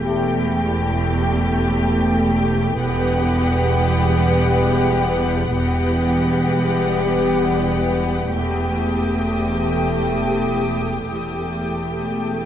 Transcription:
0.04 E1 E2 A3 G4 A4 G5
2.81 E1 E2 G3 B3 G4 B4 F#5
5.57 E1 E2 G3 B3 G4 B4 F#5
8.34 E1 E2 A3 G4 A4 G5 D6 D#6
11.11 E1 E2 A3 G4 A4 G5

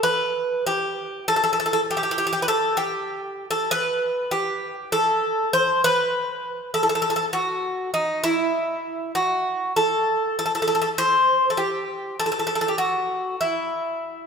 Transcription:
0.03 B4
0.67 G4
1.28 A4
1.36 A4
1.44 A4
1.53 A4
1.60 A4
1.66 A4
1.73 A4
1.91 G4
1.97 G4
2.03 G4
2.11 G4
2.18 G4
2.27 G4
2.33 G4
2.42 B4
2.48 A4
2.77 G4
3.51 A4
3.71 B4
4.31 G4
4.92 A4
5.53 C5
5.84 B4
6.74 A4
6.83 A4
6.89 A4
6.95 A4
7.02 A4
7.10 A4
7.16 A4
7.33 F#4
7.94 D#4
8.24 E4
9.15 F#4
9.76 A4
10.39 A4
10.46 A4
10.55 A4
10.62 A4
10.68 A4
10.75 A4
10.82 A4
10.98 C5
11.50 A4
11.57 G4
12.20 A4
12.26 A4
12.32 A4
12.39 A4
12.47 A4
12.55 A4
12.61 A4
12.68 G4
12.78 F#4
13.41 E4

